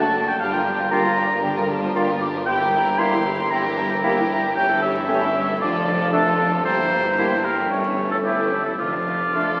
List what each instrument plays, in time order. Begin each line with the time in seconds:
Already playing: double bass section F#1, tuba F#1, cello section F#2, harp F#2 A3 D4 A4 D6, oboe A5, flute A5
0.02 viola section A3, violin section F#4 A4, harp D5
0.15 viola section F#3, harp D4, violin section D4 F#4
0.27 harp A3, viola section A3, violin section F#4 A4, oboe G5
0.40 double bass section G1, tuba G1, harp G2, cello section G2, viola section G3, violin section D4 G4, oboe F5
0.52 viola section F3, harp A#3, violin section F4 A#4, oboe G5
0.65 viola section G3, violin section D4 G4, harp D5
0.78 viola section F3, violin section F4 A#4, harp F5
0.91 viola section G3, bassoon A#3, french horn section A#3 F4, violin section D4 G4, clarinet F4, flute G5, oboe A#5, harp D6
1.03 viola section F3, violin section F4 A#4, harp F5
1.16 viola section G3, violin section D4 G4, harp D5, flute F5
1.29 viola section F3, harp A#3, violin section F4 A#4
1.43 harp D3, viola section G3, violin section D4 G4, flute G5
1.56 viola section F3, harp A#3, violin section F4 A#4
1.69 viola section G3, violin section D4 G4, harp D5, flute A5
1.82 viola section F3, violin section F4 A#4, harp F5
1.95 viola section G3, bassoon A#3, french horn section A#3 F4, violin section D4 G4, clarinet F4, flute A#5, harp D6
2.08 viola section F3, violin section F4 A#4, harp F5
2.21 viola section G3, violin section D4 G4, harp D5, flute D6
2.34 viola section F3, harp A#3, violin section F4 A#4
2.46 harp G2, viola section G3, violin section E4 G4, oboe G5, flute C6
2.60 viola section E3, harp A#3, violin section G4 A#4
2.73 viola section G3, violin section E4 G4, harp E5, flute A#5
2.85 viola section E3, violin section G4 A#4, harp A#4
2.98 viola section G3, french horn section A#3 E4, bassoon A#3, clarinet E4, violin section E4 G4, oboe C6, harp E6
3.12 viola section E3, violin section G4 A#4, harp E5
3.24 viola section G3, harp E4, violin section E4 G4
3.37 viola section E3, harp A#3, violin section G4 A#4
3.50 harp G2, viola section G3, violin section E4 G4, flute G5, oboe A#5
3.63 viola section E3, harp G3, violin section G4 A#4
3.77 viola section G3, violin section E4 G4, harp E5, flute A5
3.89 viola section E3, violin section G4 A#4, harp A#4
4.03 viola section G3, french horn section A#3 E4, bassoon A#3, clarinet E4, violin section E4 G4, flute G5, harp E6
4.16 viola section E3, violin section G4 A#4, harp E5
4.29 viola section G3, harp E4, violin section E4 G4
4.42 viola section E3, harp A#3, violin section G4 A#4
4.55 double bass section G1, tuba G1, harp G2, cello section G2, viola section G3, violin section C#4 G4, flute E5, oboe G5
4.68 viola section E3, harp A3, violin section E4 A4
4.81 viola section G3, violin section C#4 G4, harp C#5, oboe E5
4.94 viola section E3, violin section E4 A4, harp E5
5.08 viola section G3, bassoon A3, french horn section A3 C#4, clarinet C#4, violin section C#4 G4, harp C#6
5.21 viola section E3, violin section E4 A4, harp E5
5.34 viola section G3, violin section C#4 G4, harp C#5
5.47 viola section E3, harp A3, violin section E4 A4
5.60 double bass section F1, tuba F1, cello section F2, harp F2, viola section D3, violin section D4 F4, oboe D5, flute A5
5.73 viola section F3, harp A3, violin section F4 A4
5.86 viola section D3, violin section D4 F4, harp D5
5.99 viola section F3, violin section F4 A4, harp F5
6.12 viola section D3, bassoon A3, french horn section A3 D4, violin section D4 F4, clarinet D4, oboe A4, harp D6
6.25 viola section F3, violin section F4 A4
6.39 viola section D3, violin section D4 F4, harp D5
6.51 viola section F3, harp A3, violin section F4 A4
6.64 double bass section G1, tuba G1, cello section G2, harp G2, viola section G3, violin section A#3 G4, oboe C5, flute A#5
6.78 viola section E3, harp A#3, violin section A#3 E4
6.91 viola section G3, violin section A#3 G4, harp E5
7.04 viola section E3, violin section A#3 E4
7.18 viola section G3, bassoon A#3, french horn section A#3 E4, violin section A#3 G4, clarinet E4, flute A5, harp E6
7.31 viola section E3, violin section A#3 E4, harp E5
7.43 viola section G3, violin section A#3 G4, harp E4, oboe A#4, flute G5
7.57 viola section E3, harp A#3, violin section A#3 E4
7.70 harp G2, viola section G3, violin section A3 C#4, oboe C#5
7.83 viola section E3, harp A3, violin section C#4 E4
7.97 viola section G3, violin section A3 C#4, harp E5
8.10 viola section E3, violin section C#4 E4, harp A4, oboe A4
8.24 viola section G3, french horn section A3 E4, bassoon A3, violin section A3 C#4, clarinet E4, oboe G4, harp E6, flute E6
8.38 viola section E3, violin section C#4 E4, harp E5
8.51 viola section G3, violin section A3 C#4, harp E4
8.65 viola section E3, harp A3, violin section C#4 E4, oboe A4
8.79 double bass section F1, tuba F1, harp F2, cello section F2, viola section D3, violin section A3 F4, oboe F4, flute D6
8.92 viola section F3, harp A3, violin section D4
9.06 viola section D3, violin section A3 F4, harp D5
9.20 viola section F3, violin section D4, harp F5
9.33 viola section D3, french horn section A3 D4, bassoon A3, violin section A3 A4, clarinet D4, harp D6
9.48 viola section F3, violin section D4, harp F5